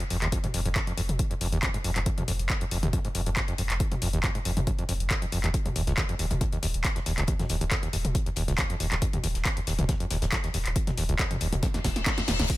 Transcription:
0.00 F2, closed hi-hat
0.10 F1 F2, open hi-hat
0.22 F1 D#2, clap, closed hi-hat
0.32 F2, kick, closed hi-hat
0.44 G#2, closed hi-hat, mid tom
0.54 F1 F2, open hi-hat
0.65 F1 F2, closed hi-hat
0.76 F#2, kick, clap, closed hi-hat
0.87 F2, closed hi-hat
0.97 F1 F2, open hi-hat
1.09 F1, closed hi-hat, mid tom
1.19 kick, closed hi-hat
1.31 F2, closed hi-hat
1.41 F1 F2, open hi-hat
1.52 F1 D#2, closed hi-hat
1.63 F2, kick, clap, closed hi-hat
1.74 G#2, closed hi-hat
1.84 F1 F2, open hi-hat
1.96 F1 F2, clap, closed hi-hat
2.06 F#2, kick, closed hi-hat
2.18 F2, closed hi-hat, mid tom
2.28 F1 F2, open hi-hat
2.39 F1, closed hi-hat
2.50 kick, clap, closed hi-hat
2.61 F2, closed hi-hat
2.71 F1 F2, open hi-hat
2.83 F1 D#2, closed hi-hat, mid tom
2.93 F2, kick, closed hi-hat
3.05 G#2, closed hi-hat
3.15 F1 F2, open hi-hat
3.26 F1 F2, closed hi-hat
3.37 F#2, kick, clap, closed hi-hat
3.48 F2, closed hi-hat
3.58 F1 F2, open hi-hat
3.70 F1, clap, closed hi-hat
3.80 kick, closed hi-hat
3.92 F2, closed hi-hat, mid tom
4.02 F1 F2, open hi-hat
4.13 F1 D#2, closed hi-hat
4.24 F2, kick, clap, closed hi-hat
4.35 G#2, closed hi-hat
4.45 F1 F2, open hi-hat
4.57 F1 F2, closed hi-hat, mid tom
4.67 F#2, kick, closed hi-hat
4.79 F2, closed hi-hat
4.89 F1 F2, open hi-hat
5.00 F1, closed hi-hat
5.11 kick, clap, closed hi-hat
5.22 F2, closed hi-hat
5.32 F1 F2, open hi-hat
5.44 F1 D#2, clap, closed hi-hat
5.54 kick, closed hi-hat
5.66 D#2, closed hi-hat, mid tom
5.76 D#1 D#2, closed hi-hat, open hi-hat
5.87 D#1 C#2, snare, closed hi-hat
5.97 D#2, kick, snare, clap, closed hi-hat
6.09 F2, closed hi-hat
6.19 D#1 D#2, closed hi-hat, open hi-hat
6.30 D#1 D#2, closed hi-hat, mid tom
6.41 F2, kick, closed hi-hat
6.52 D#2, closed hi-hat
6.63 D#1 D#2, snare, closed hi-hat, open hi-hat
6.74 D#1, closed hi-hat
6.84 kick, snare, clap, closed hi-hat
6.96 D#2, snare, closed hi-hat
7.06 D#1 D#2, snare, closed hi-hat, open hi-hat
7.18 D#1 C#2, clap, closed hi-hat
7.27 D#2, kick, closed hi-hat
7.39 F2, snare, closed hi-hat, mid tom
7.49 D#1 D#2, snare, closed hi-hat, open hi-hat
7.61 D#1 D#2, closed hi-hat
7.71 F2, kick, snare, clap, closed hi-hat
7.83 D#2, closed hi-hat
7.93 D#1 D#2, closed hi-hat, open hi-hat
8.05 D#1, closed hi-hat, mid tom
8.15 kick, closed hi-hat
8.26 D#2, closed hi-hat
8.36 D#1 D#2, snare, closed hi-hat, open hi-hat
8.48 D#1 C#2, snare, closed hi-hat
8.58 D#2, kick, snare, clap, closed hi-hat
8.70 F2, closed hi-hat
8.80 D#1 D#2, snare, closed hi-hat, open hi-hat
8.92 D#1 D#2, clap, closed hi-hat
9.02 F2, kick, closed hi-hat
9.13 D#2, closed hi-hat, mid tom
9.24 D#1 D#2, closed hi-hat, open hi-hat
9.34 D#1, snare, closed hi-hat
9.45 kick, snare, clap, closed hi-hat
9.57 D#2, closed hi-hat
9.67 D#1 D#2, snare, closed hi-hat, open hi-hat
9.78 D#1 C#2, closed hi-hat, mid tom
9.89 D#2, kick, snare, closed hi-hat
10.00 F2, closed hi-hat
10.11 D#1 D#2, snare, closed hi-hat, open hi-hat
10.22 D#1 D#2, snare, closed hi-hat
10.32 F2, kick, snare, clap, closed hi-hat
10.44 D#2, snare, closed hi-hat
10.54 D#1 D#2, snare, closed hi-hat, open hi-hat
10.66 D#1, clap, closed hi-hat
10.76 kick, closed hi-hat
10.87 D#2, snare, closed hi-hat, mid tom
10.97 D#1 D#2, snare, closed hi-hat, open hi-hat
11.09 D#1 C#2, closed hi-hat
11.19 D#2, kick, snare, clap, closed hi-hat
11.31 F2, closed hi-hat, mid tom
11.41 D#1 D#2, closed hi-hat, open hi-hat
11.52 D#1 D#2, closed hi-hat, mid tom
11.63 F2, kick, snare, closed hi-hat, reverse cymbal
11.74 D#2, snare, closed hi-hat
11.84 D#1 D#2, kick, snare, closed hi-hat, open hi-hat
11.96 D#1, snare, closed hi-hat
12.06 kick, snare, clap, closed hi-hat
12.18 D#2, snare, closed hi-hat
12.28 D#1 D#2, snare, closed hi-hat, open hi-hat
12.39 D#1 C#2, snare, closed hi-hat
12.50 kick, closed hi-hat, crash

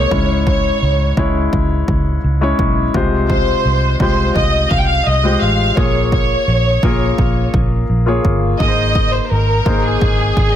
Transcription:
Already playing: A#3 D#4 G#4 A#4 C5 C#5
0.11 C#2 G#2 G#3 C#4 E4 C#5, kick
0.46 C#5, kick
0.82 C#2
1.17 C#2 G#3 C#4 E4 C#5, kick
1.53 C#2, kick
1.88 C#2, kick
2.24 C#2
2.41 G#3 C#4 E4 C#5
2.59 B1, kick
2.94 C2 C3 G#3 F4 G4 C5, kick
3.30 C5, kick
3.65 C2
4.00 C2 G#3 F4 G4 C5, kick
4.36 C2 D#5, kick
4.71 C2 F5, kick
4.78 G5
4.86 F5
5.06 C2 D#5
5.23 G#3 F4 G4 C5
5.42 A1 F5
5.76 A#1 A#3 F4 G#4 C#5, kick
6.12 C#5, kick
6.48 A#1
6.83 A#1 A#3 F4 G#4 A#4, kick
7.18 A#1, kick
7.54 A#1, kick
7.89 A#1
8.06 A#3 F4 G#4 C#5
8.25 G1, kick
8.59 G#1 A#3 D#4 G#4 A#4 D#5, kick
8.68 C5
8.95 kick
9.12 C5
9.23 C5
9.29 G#1 A#4
9.65 G#1 A#3 D#4 G#4 C5, kick
9.82 G#4
10.02 G#1, kick
10.37 G#1, kick
10.52 D#5

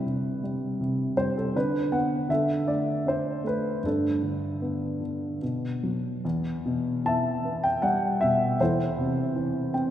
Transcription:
Already playing: C3 G3 E4 B4
0.06 C3
0.44 G3
0.81 C3
1.17 G3 C5
1.37 A4
1.55 D3 D4 B4
1.92 B3 F#5
2.29 D3 A4 E5
2.68 A3 D5
3.07 D4 C5
3.44 A3 B4
3.83 G2 D4 A4
4.23 D3
4.62 B3
5.01 D3
5.42 B2
5.83 F#3
6.25 E2
6.65 B2
7.05 E3 E5 A5
7.45 B3
7.64 G5
7.82 G3 F#5
8.21 B2 E5
8.60 E2 E4 A4 C5
8.98 C3
9.36 E3
9.74 C4 G5

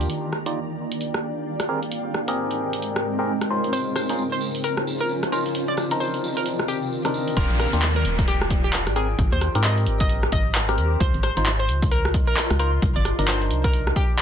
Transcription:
Already playing: D#3 D4 F4 G4 D5 A#5
0.00 D#2, closed hi-hat, tambourine
0.10 D#3 A#3 D4 F4 G5, closed hi-hat
0.33 cross-stick
0.46 D#4 F4 G4 D5, closed hi-hat
0.82 F5
0.92 closed hi-hat
1.01 closed hi-hat
1.14 cross-stick
1.60 cross-stick, closed hi-hat
1.68 G#2 C4 D#4 G4 G#4 A#4
1.83 A#4, closed hi-hat
1.92 G#3, closed hi-hat
2.14 cross-stick
2.28 C4 G4 G#4 A#4, closed hi-hat
2.51 closed hi-hat
2.61 G5
2.73 closed hi-hat
2.82 closed hi-hat
2.96 cross-stick
3.19 C4 G4 G#4 A#4
3.41 cross-stick, closed hi-hat
3.50 C#4 D#4 F4 C5
3.64 closed hi-hat
3.73 C#3 C#4 F4 G#4 C5, closed hi-hat, tambourine
3.82 F4
3.96 C5, cross-stick, tambourine
4.09 C#4 D#4 F4 C5, closed hi-hat, tambourine
4.19 tambourine
4.32 C5, tambourine
4.41 tambourine
4.55 closed hi-hat, tambourine
4.64 A#4, closed hi-hat, tambourine
4.77 cross-stick
4.87 tambourine
5.01 A#4, tambourine
5.09 tambourine
5.23 cross-stick, closed hi-hat
5.32 C#4 D#4 F4 A#4 C5, tambourine
5.46 closed hi-hat, tambourine
5.55 C3 D#3 C4 G4 A#4 D5, closed hi-hat, tambourine
5.68 D5
5.77 cross-stick, tambourine
5.82 D#3
5.90 C4 D4 D#4 A#4, closed hi-hat, tambourine
6.00 C5, tambourine
6.14 closed hi-hat, tambourine
6.24 tambourine
6.37 A#4 D5, closed hi-hat
6.46 closed hi-hat, tambourine
6.59 cross-stick
6.68 G4, tambourine
6.82 tambourine
6.92 tambourine
7.05 C4 D4 D#4 A#4, cross-stick, closed hi-hat, tambourine
7.14 tambourine
7.27 closed hi-hat, tambourine
7.37 D#1 D4 F4 G4 A#4, kick, closed hi-hat, downlifter
7.50 A#1, closed hi-hat
7.60 A#4, cross-stick, closed hi-hat
7.65 G5
7.73 D#2 D4 F4 G4, closed hi-hat
7.82 clap
7.96 A#4, closed hi-hat
8.05 D#1, closed hi-hat
8.19 kick, closed hi-hat
8.28 G4, closed hi-hat
8.41 cross-stick
8.50 kick, closed hi-hat
8.64 G4
8.73 clap
8.87 G#1, cross-stick, closed hi-hat
8.96 C4 G4 G#4 A#4, closed hi-hat
9.19 G#1, kick, closed hi-hat
9.32 D#2 C5, closed hi-hat
9.41 cross-stick, closed hi-hat
9.47 C5
9.55 G#2 C4 G4 A#4, closed hi-hat
9.63 D#5 A#5, clap
9.78 closed hi-hat
9.87 G#1, closed hi-hat
10.00 D#5, kick, closed hi-hat
10.09 closed hi-hat
10.23 cross-stick
10.32 G#1 D#5, kick, closed hi-hat
10.55 clap
10.69 C4 G4 A#4, cross-stick, closed hi-hat
10.78 D#2, closed hi-hat
11.00 C#2 F4 C5, kick, closed hi-hat
11.14 G#1 D#5, closed hi-hat
11.21 C5 C6, cross-stick, closed hi-hat
11.37 G#1 D#4 F4 C5, closed hi-hat
11.46 clap
11.59 C5, closed hi-hat
11.69 C#2, closed hi-hat
11.82 kick, closed hi-hat
11.91 A#4, closed hi-hat
12.05 cross-stick
12.14 kick, closed hi-hat
12.27 A#4
12.37 clap
12.51 C#2, cross-stick, closed hi-hat
12.59 D#4 F4 A#4 C5, closed hi-hat
12.82 C2 D#3, kick, closed hi-hat
12.96 G1 D5, closed hi-hat
13.05 cross-stick, closed hi-hat
13.10 D5
13.19 G1 D4 D#4 A#4, closed hi-hat
13.28 C5 A#5, clap
13.42 closed hi-hat
13.50 C2, closed hi-hat
13.64 A#4, kick, closed hi-hat
13.73 closed hi-hat
13.87 cross-stick
13.96 G4, kick, closed hi-hat

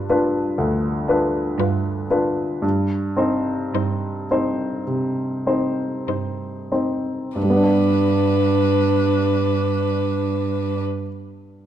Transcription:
Already playing: G2 D4 F4 B4
0.09 D4 F4 B4
0.58 D2
1.08 D4 F4 B4
1.58 G2 F4 B4
2.10 D4 F4 B4
2.62 G2
3.17 C4 D#4 C5
3.74 G2 D#4 C5
4.31 C4 D#4 C5
4.87 C3
5.47 C4 D#4 C5
6.08 G2 D#4 C5
6.72 C4 D#4 C5
7.36 G2 D4 B4
7.43 G3
7.50 B3
7.56 D4
7.64 D5

